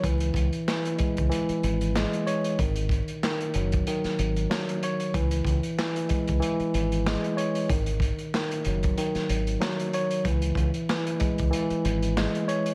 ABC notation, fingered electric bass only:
X:1
M:4/4
L:1/16
Q:"Swing 16ths" 1/4=94
K:C#m
V:1 name="Fingered electric bass" clef=bass
C,,2 C,, z4 C,, z2 G,,,3 z3 | G,,,3 z3 F,,,2 z2 G,,,2 z4 | C,,2 C,, z4 C,, z2 G,,,3 z3 | G,,,3 z3 F,,,2 z2 G,,,2 z4 |
C,,2 C,, z4 C,, z2 G,,,3 z3 |]